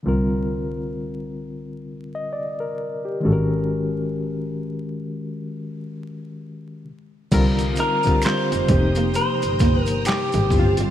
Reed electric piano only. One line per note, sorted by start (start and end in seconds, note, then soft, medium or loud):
0.03 3.18 D3 medium
0.03 3.19 G3 soft
0.03 3.20 C4 soft
0.03 3.20 F4 soft
0.08 1.85 A#4 medium
2.15 2.32 D#5 medium
2.33 2.59 D5 medium
2.60 3.03 A#4 medium
3.05 3.48 G4 soft
3.21 6.82 D#3 medium
3.21 6.82 G#3 medium
3.21 6.83 C#4 medium
3.25 6.84 F#4 medium
3.25 3.33 A4 soft
3.33 6.88 A#4 medium
7.31 7.98 D3 loud
7.31 7.98 G3 medium
7.31 7.98 C4 loud
7.31 7.99 F4 loud
7.31 7.99 A#4 loud
8.05 8.64 D3 medium
8.05 8.64 G3 medium
8.05 8.64 C4 medium
8.05 8.65 F4 medium
8.05 8.65 G4 medium
8.68 10.38 C3 medium
8.68 10.38 F3 medium
8.68 10.38 A#3 medium
8.68 10.39 D#4 medium
8.68 10.39 G4 medium
10.50 10.90 A2 medium
10.50 10.90 D3 medium
10.50 10.90 G3 medium
10.50 10.90 C4 medium
10.50 10.60 E4 medium
10.59 10.90 F4 medium